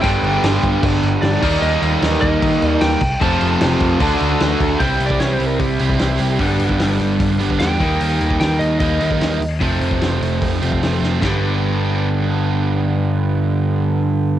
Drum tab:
CC |x-x-x-x-x-x-x-x-|x-x-x-x-x-x-x-x-|x-x-x-x-x-x-x-x-|----------------|
RD |----------------|----------------|----------------|----------------|
HH |----------------|----------------|----------------|o-o-o-o-o-o-o-o-|
SD |----o-------o---|----o-------o---|----o-------o---|----o-------o---|
BD |o-----o-o-----o-|------o-o-----o-|o-----o-o-----o-|o--o----o--o----|

CC |----------------|----------------|----------------|----------------|
RD |----------------|----------------|----------------|b---------------|
HH |o-o-o-o-o-o-o-o-|o-o-o-o-o-o-o-o-|o-o-o-o-o-o-o---|----------------|
SD |----o-------o---|----o-------o---|----o-------o-o-|o---------------|
BD |o--o----o--o--o-|---o----o--o----|o--o----o--o----|o---------------|

CC |----------------|
RD |----------------|
HH |----------------|
SD |----------------|
BD |----------------|